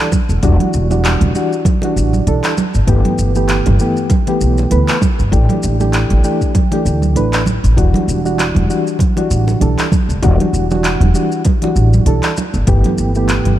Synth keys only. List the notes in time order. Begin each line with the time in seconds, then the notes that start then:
0.43 E3 G3 D4 F#4
0.90 E3 G3 D4 F#4
1.35 E3 G3 D4 F#4
1.82 E3 G3 D4 F#4
2.27 E3 G3 D4 A4
2.87 E3 A3 B3 G4
3.35 E3 A3 B3 G4
3.79 E3 A3 B3 G4
4.27 E3 A3 B3 G4
4.70 E3 A3 B3 B4
5.31 E3 A3 D4 G4
5.80 E3 A3 D4 G4
6.23 E3 A3 D4 G4
6.71 E3 A3 D4 G4
7.15 E3 A3 D4 B4
7.77 E3 G3 D4 F#4
8.24 E3 G3 D4 F#4
8.68 E3 G3 D4 F#4
9.16 E3 G3 D4 F#4
9.60 E3 G3 D4 A4
10.22 E3 G3 D4 F#4
10.71 E3 G3 D4 F#4
11.14 E3 G3 D4 F#4
11.62 E3 G3 D4 F#4
12.06 E3 G3 D4 A4
12.67 E3 A3 B3 G4
13.16 E3 A3 B3 G4